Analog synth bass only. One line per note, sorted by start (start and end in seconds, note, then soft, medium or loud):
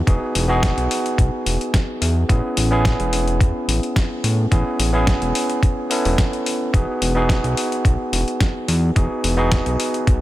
0.07 0.19 E1 loud
0.35 0.73 E1 loud
0.77 0.88 B1 medium
1.18 1.30 B1 medium
1.46 1.58 E1 loud
2.01 2.24 E2 loud
2.29 2.41 A1 loud
2.57 2.95 A1 loud
2.99 3.42 E1 loud
3.40 3.52 E2 medium
3.68 3.80 A1 loud
4.24 4.47 A2 medium
4.52 4.64 A1 loud
4.79 5.17 A1 loud
5.22 5.33 E1 medium
6.05 6.16 E1 loud
6.74 6.86 E1 medium
7.02 7.40 E1 loud
7.44 7.55 B1 medium
7.85 7.97 B1 medium
8.12 8.24 E1 loud
8.68 8.91 E2 medium
8.96 9.08 E1 loud
9.24 9.62 E1 loud
9.66 9.77 B1 medium
10.07 10.19 B1 medium